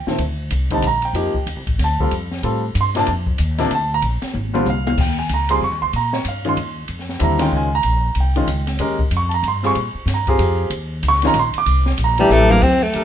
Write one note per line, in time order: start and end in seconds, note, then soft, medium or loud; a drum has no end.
0.07 0.19 A#2 medium
0.07 0.19 D#3 medium
0.07 0.19 A3 medium
0.07 0.19 C4 medium
0.07 muted upright bass stroke soft
0.07 snare medium
0.18 0.50 D2 medium
0.18 ride medium
0.51 0.82 C2 medium
0.51 hi-hat pedal medium
0.51 ride medium
0.70 0.83 D3 medium
0.70 0.83 G3 medium
0.70 0.83 C4 medium
0.70 0.83 D#4 medium
0.70 0.85 A5 medium
0.70 kick medium
0.70 ride soft
0.82 1.13 A#1 medium
0.82 hi-hat pedal medium
0.82 ride medium
0.87 1.05 A#5 medium
1.02 1.45 G5 medium
1.02 ride soft
1.13 1.33 F2 medium
1.13 1.33 F3 medium
1.13 1.34 A#3 medium
1.13 1.34 D#4 medium
1.13 1.34 G4 medium
1.13 ride medium
1.34 muted upright bass stroke soft
1.34 kick soft
1.47 1.56 D#2 medium
1.47 hi-hat pedal medium
1.47 ride medium
1.56 1.67 C2 medium
1.67 1.78 A1 medium
1.67 kick medium
1.67 ride soft
1.79 2.10 D2 medium
1.79 snare soft
1.79 ride medium
1.84 2.01 A5 medium
1.99 2.11 G3 medium
1.99 2.11 C4 medium
1.99 2.11 F4 medium
1.99 2.11 A4 medium
1.99 kick medium
2.04 2.13 F5 medium
2.11 2.43 F2 medium
2.11 ride medium
2.31 snare soft
2.43 2.74 A2 medium
2.43 2.61 G3 medium
2.43 2.61 C4 medium
2.43 2.62 F4 medium
2.43 2.62 A4 medium
2.43 ride medium
2.75 3.06 G2 medium
2.75 hi-hat pedal medium
2.75 ride medium
2.81 2.97 C6 medium
2.95 3.06 C3 medium
2.95 3.06 F3 medium
2.95 3.07 A#3 medium
2.95 3.07 D4 medium
2.95 snare soft
2.95 ride medium
2.99 3.09 A5 medium
3.06 3.38 F2 medium
3.06 ride medium
3.27 kick medium
3.38 3.70 D#2 medium
3.38 hi-hat pedal medium
3.38 ride medium
3.58 3.70 C3 medium
3.58 3.70 F3 medium
3.58 3.70 A#3 medium
3.58 3.70 D4 medium
3.58 snare soft
3.58 ride soft
3.71 4.02 D2 medium
3.71 ride medium
3.75 3.92 A5 medium
3.94 4.00 A#5 loud
4.02 4.21 A#1 medium
4.02 ride medium
4.22 muted upright bass stroke soft
4.22 snare soft
4.22 ride soft
4.34 4.65 G#1 medium
4.34 high tom medium
4.54 4.65 D3 medium
4.54 4.65 G3 medium
4.54 4.65 C4 medium
4.54 4.65 F4 medium
4.54 high tom medium
4.66 4.97 C2 loud
4.66 4.86 F5 medium
4.66 hi-hat pedal medium
4.66 high tom medium
4.87 4.98 F5 medium
4.87 high tom loud
4.97 5.29 D#2 medium
4.97 5.19 G5 medium
4.97 kick medium
4.97 crash medium
5.19 5.30 G#5 medium
5.29 5.60 C#2 medium
5.29 hi-hat pedal medium
5.29 ride medium
5.34 5.51 A#5 medium
5.49 5.60 G3 medium
5.49 5.61 C4 medium
5.49 5.61 F4 medium
5.49 5.61 G#4 medium
5.49 5.62 C6 loud
5.49 ride medium
5.61 5.72 F2 medium
5.61 5.82 C#6 medium
5.72 5.82 D#2 medium
5.82 5.92 C#2 medium
5.82 5.93 C6 medium
5.93 6.24 A#2 medium
5.93 6.14 A#5 medium
5.93 ride medium
6.13 6.25 C#5 medium
6.13 snare medium
6.25 6.56 G2 medium
6.25 6.46 F5 medium
6.25 hi-hat pedal medium
6.25 ride medium
6.45 6.56 D#3 medium
6.45 6.56 G#3 medium
6.45 6.56 C#4 medium
6.45 6.56 F4 medium
6.45 ride soft
6.49 6.82 C6 medium
6.57 6.88 D#2 medium
6.57 ride medium
6.88 7.20 F2 medium
6.88 ride medium
6.99 snare soft
7.09 snare soft
7.19 7.51 D#2 medium
7.19 7.38 D3 medium
7.19 7.38 G3 medium
7.19 7.38 C4 medium
7.19 7.39 E4 medium
7.19 hi-hat pedal medium
7.19 ride medium
7.24 7.41 A#5 medium
7.39 7.68 D#3 medium
7.39 7.68 G#3 medium
7.39 7.68 C#4 medium
7.39 7.68 F4 medium
7.39 7.53 G5 medium
7.39 snare soft
7.39 ride medium
7.52 7.83 C#2 medium
7.57 7.74 G#5 medium
7.75 8.15 A#5 loud
7.83 8.15 A#1 medium
7.83 ride medium
8.15 8.47 C2 medium
8.15 ride medium
8.20 8.67 G5 medium
8.36 8.47 D#3 medium
8.36 8.47 G#3 medium
8.36 8.47 C#4 medium
8.36 8.47 F4 medium
8.36 ride soft
8.47 8.78 C#2 medium
8.47 hi-hat pedal medium
8.47 ride medium
8.67 snare soft
8.67 ride medium
8.79 9.10 D#2 medium
8.79 8.98 G#3 medium
8.79 8.98 C#4 medium
8.79 8.98 G4 medium
8.79 8.98 A#4 medium
8.79 ride medium
8.99 kick medium
9.11 9.42 F2 medium
9.11 hi-hat pedal medium
9.11 ride medium
9.17 9.34 C#6 medium
9.29 9.31 A5 medium
9.29 ride medium
9.34 9.45 A#5 medium
9.43 9.74 G2 medium
9.43 ride medium
9.48 9.65 C6 medium
9.63 9.74 G3 medium
9.63 9.74 C4 medium
9.63 9.74 F4 medium
9.63 9.75 G#4 medium
9.63 10.06 C#6 loud
9.63 snare soft
9.75 9.94 A#2 medium
9.75 ride medium
9.95 muted upright bass stroke soft
10.06 10.37 G2 medium
10.06 snare soft
10.06 hi-hat pedal medium
10.06 ride medium
10.14 10.59 A#5 medium
10.27 10.69 C4 medium
10.27 10.69 F4 medium
10.27 10.69 G4 medium
10.27 10.70 G#4 medium
10.27 kick medium
10.27 ride soft
10.39 10.70 F2 medium
10.39 ride medium
10.70 11.01 D#2 medium
10.70 ride medium
11.03 11.33 C#2 medium
11.03 hi-hat pedal medium
11.03 ride medium
11.08 11.25 C#6 loud
11.13 snare soft
11.22 11.34 D#3 medium
11.22 11.34 G#3 medium
11.22 11.35 C#4 medium
11.22 11.35 F4 medium
11.22 snare soft
11.22 ride medium
11.27 11.37 A#5 loud
11.34 11.53 A#1 loud
11.34 ride medium
11.39 11.56 C6 loud
11.54 muted upright bass stroke soft
11.54 ride medium
11.58 11.97 D6 loud
11.66 11.97 C2 medium
11.66 ride medium
11.86 snare medium
11.98 12.29 A#1 medium
11.98 hi-hat pedal medium
11.98 ride medium
12.04 12.50 A#5 medium
12.18 12.60 E3 medium
12.18 12.33 G3 loud
12.18 12.60 A3 medium
12.18 12.61 D4 medium
12.18 12.61 G4 medium
12.18 ride soft
12.29 12.61 A1 loud
12.29 12.52 A3 loud
12.29 snare soft
12.40 mid tom medium
12.50 12.64 A#3 loud
12.50 mid tom loud
12.62 12.93 F2 medium
12.62 12.84 C4 medium
12.62 kick medium
12.62 crash medium
12.83 13.04 A3 medium
12.93 13.04 D#2 medium
12.93 13.04 D4 soft
12.93 13.04 G4 soft
12.93 13.04 A4 medium
12.93 13.04 A#4 medium
12.93 hi-hat pedal soft
12.93 ride medium